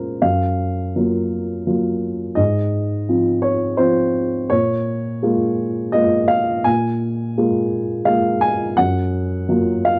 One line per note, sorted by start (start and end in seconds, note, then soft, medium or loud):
0.00 0.26 A#2 soft
0.00 0.26 G#3 soft
0.00 0.25 C#4 soft
0.00 0.25 F4 soft
0.00 0.22 A#4 medium
0.00 0.25 C5 medium
0.00 0.26 C#5 medium
0.22 0.93 F#2 soft
0.22 2.38 F5 medium
0.96 1.64 F#3 soft
0.96 1.64 A#3 soft
0.96 1.64 F4 soft
1.67 2.34 F#3 soft
1.67 2.34 A#3 soft
1.67 2.35 F4 soft
2.35 3.07 G#2 soft
2.35 3.44 D#5 medium
3.09 3.76 F3 soft
3.09 3.77 C4 soft
3.09 3.77 F4 soft
3.42 3.79 C#5 medium
3.77 4.47 F3 soft
3.77 4.47 C4 soft
3.77 4.47 F4 soft
3.77 4.50 C5 medium
4.50 5.21 A#2 soft
4.50 5.93 C#5 medium
5.23 5.90 G#3 soft
5.23 5.91 A#3 soft
5.23 5.91 F4 soft
5.92 6.62 G#3 soft
5.92 6.62 A#3 soft
5.92 6.62 F4 soft
5.92 6.29 D#5 medium
6.28 6.65 F5 medium
6.64 7.35 A#2 medium
6.64 8.07 G#5 medium
7.38 8.04 G#3 soft
7.38 8.04 A#3 soft
7.38 8.05 F4 soft
8.05 8.74 G#3 soft
8.05 8.74 A#3 soft
8.05 8.75 F4 soft
8.05 8.42 F5 medium
8.41 8.78 G#5 medium
8.77 9.48 F#2 medium
8.77 9.86 F#5 medium
9.49 9.99 F#3 soft
9.49 9.99 A#3 soft
9.49 9.99 F4 soft
9.85 9.99 F5 medium